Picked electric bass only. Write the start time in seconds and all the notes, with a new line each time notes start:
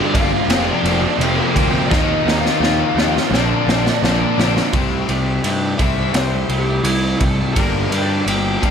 0.14 G1
0.48 F1
0.84 F1
1.18 F1
1.55 D2
1.91 D#2
2.25 D#2
2.60 D#2
2.95 D#2
3.31 A#1
3.67 A#1
4.03 A#1
4.38 A#1
4.73 C2
5.09 C2
5.44 G2
5.79 C2
6.14 C2
6.49 C2
6.83 C2
7.21 C2
7.56 G1
7.91 G2
8.26 G1
8.62 D2